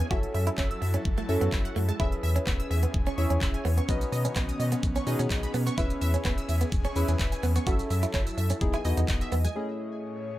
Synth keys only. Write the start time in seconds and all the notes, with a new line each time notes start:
0.10 C#4 E4 F#4 A4
1.29 C#4 E4 F#4 A4
1.99 C#4 E4 G#4 B4
3.18 C#4 E4 G#4 C#5
3.88 C#4 D#4 F#4 B4
5.07 C#4 D#4 F#4 G#4
5.78 C#4 E4 G#4 B4
6.96 C#4 E4 G#4 B4
7.66 C#4 E4 F#4 A4
8.61 B3 D#4 E4 G#4
8.85 B3 D#4 E4 F#4
9.56 A3 C#4 E4 G#4